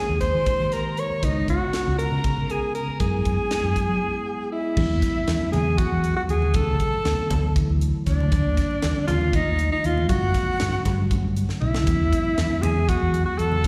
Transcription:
Already playing: G#3 A#3 C#4 D#4 G#4 G#5
0.09 D#2
0.20 C5 C6, kick, snare, closed hi-hat
0.34 D#3
0.46 G#3 A#3 C#4 G4, kick, closed hi-hat
0.60 D#3
0.72 A#4 A#5, snare, closed hi-hat
0.97 C#5 C#6, closed hi-hat
1.10 muted fretless electric bass stroke
1.22 C#2 G#3 B3 D#4 F#4 D#5, kick, closed hi-hat
1.48 C#2 F#4 F#5, kick, closed hi-hat
1.73 G#3 B3 D#4 F4, muted fretless electric bass stroke, snare, closed hi-hat
1.87 C#2
1.99 A#4 A#5, closed hi-hat
2.12 C#3
2.24 G#3 B3 D#4 G#4, kick, closed hi-hat
2.38 C#3
2.50 G#4 G#5, closed hi-hat
2.75 A#4 A#5, closed hi-hat
2.88 muted fretless electric bass stroke
3.00 F#2 G#3 B3 C#4 E4 G#4 G#5, kick, closed hi-hat
3.25 F#2, kick, closed hi-hat
3.51 G#3 B3 C#4 E4, muted fretless electric bass stroke, snare, closed hi-hat
3.64 F#2
3.76 kick, closed hi-hat
3.89 F#3
4.01 G#3 B3 C#4 E4
4.26 F#5
4.52 E4 D#5 E5
4.76 E2 F#3 G#3 B3 E4, kick, crash, high conga
4.90 D#2
5.02 kick, snare, closed hi-hat
5.15 muted fretless electric bass stroke, low conga
5.27 E2 F#3 G#3 B3 D#4, snare, closed hi-hat
5.40 muted fretless electric bass stroke
5.52 E2 G#4 G#5, snare, closed hi-hat, low conga
5.66 high conga
5.78 F#3 G#3 B3 D#4 F#4 F#5, kick, closed hi-hat
5.91 E2, low conga
6.04 closed hi-hat
6.16 F#4 F#5
6.29 D#2 G#4 G#5, closed hi-hat
6.42 low conga
6.54 D2 E3 F#3 A3 C#4 A4 A5, kick, closed hi-hat, high conga
6.67 C#2
6.80 kick, closed hi-hat
6.93 muted fretless electric bass stroke, low conga
7.05 D2 E3 F#3 A3 B3, snare, closed hi-hat
7.19 muted fretless electric bass stroke
7.31 D2, kick, closed hi-hat, low conga
7.43 high conga
7.55 E3 F#3 A3 E4, kick, closed hi-hat
7.70 D2, low conga
7.81 closed hi-hat
8.06 D2 D4 D5, kick, snare, closed hi-hat
8.20 low conga
8.32 D#2 D3 F3 G3 A#3, kick, closed hi-hat, high conga
8.46 D2
8.57 kick, snare, closed hi-hat
8.71 muted fretless electric bass stroke, low conga
8.82 D#2 D3 F3 G3 C4, snare, closed hi-hat
8.96 muted fretless electric bass stroke
9.07 D#2 F4 F5, snare, closed hi-hat, low conga
9.21 high conga
9.33 D#3 F3 G3 A3 D#4 D#5, kick, closed hi-hat
9.46 D#2, low conga
9.59 closed hi-hat
9.72 D#4 D#5
9.84 D#2 F4 F5, closed hi-hat
9.97 low conga
10.09 G2 D3 F#3 A3 B3 F#4 F#5, kick, closed hi-hat, high conga, low conga
10.23 F#2
10.34 kick, snare, closed hi-hat, low conga
10.48 muted fretless electric bass stroke
10.60 G2 D3 F#3 A3 D4, snare, closed hi-hat, low conga
10.74 muted fretless electric bass stroke
10.85 G2, kick, snare, closed hi-hat, low conga
10.98 high conga
11.11 D3 F#3 A3 C#4, kick, closed hi-hat
11.24 G2
11.36 closed hi-hat
11.49 snare
11.61 B1 E4 E5, mid tom
11.74 snare, low conga
11.86 E2 E3 F#3 G#3 B3, kick, closed hi-hat, high conga
12.00 D#2
12.13 kick, closed hi-hat
12.25 muted fretless electric bass stroke, low conga
12.37 E2 D#3 F#3 G#3 B3, snare, closed hi-hat
12.51 muted fretless electric bass stroke
12.62 E2 G#4 G#5, closed hi-hat, low conga
12.76 high conga
12.89 D#3 F#3 G#3 B3 F#4 F#5, kick, closed hi-hat
13.01 E2, low conga
13.14 closed hi-hat
13.26 F#4 F#5
13.38 E2 A4 A5, closed hi-hat
13.52 low conga
13.64 E3, closed hi-hat

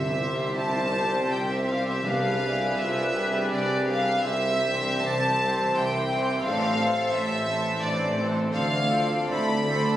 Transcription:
Already playing: C2 C3 G4 C5 E5
0.14 G3 C4 G4 C5
0.55 C2 C3 E4 A5
0.93 G3 C4 G4 C5
1.30 C2 C3 G5
1.50 E5
1.67 G3 C4 G4 C5 F5
1.88 E5
2.03 C2 C3 G3 B3 D4 G4 G#4 B4 F5
2.41 G3 D4 E4 G#4 B4
2.79 C2 C3 F4 E5
3.14 G3 D4 G4 G#4 B4
3.51 C2 C3 D5
3.88 G3 D4 G#4 B4 F5
4.24 C2 C3 C4 E4 G4 C5 E5
4.63 E3 C4 D4 G4 C5
5.02 C2 C3 C4 A5
5.39 E3 C4 G4 C5
5.75 C2 C3 E4 G5
6.11 E3 C4 G4 C5
6.43 A1 A2 E3 C4 D4 A4 C5 F5
6.47 A4
6.76 E3 C4 A4 C5
7.12 A1 A2 E5
7.45 E3 C4 A4 C5
7.81 A1 A2 D4 D5
8.15 E3 C4 A4 C5
8.52 D2 C4 D4 A4 C5 F5
8.89 F4 A4 C5 D5
8.93 D3 C4
9.30 D2 E4 A4 C5 B5
9.67 D3 C4 D4 A4 C5 D5

